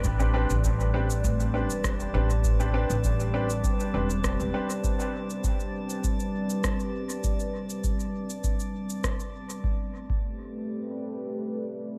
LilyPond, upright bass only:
\new Staff \with { instrumentName = "Upright bass" } { \clef bass \time 4/4 \key a \minor \tempo 4 = 100 a,,8. a,,4~ a,,16 a,,8. e,,8. a,,8~ | a,,8. a,,4~ a,,16 r8 e,,8. e,,16 r8 | r1 | r1 |
r1 | }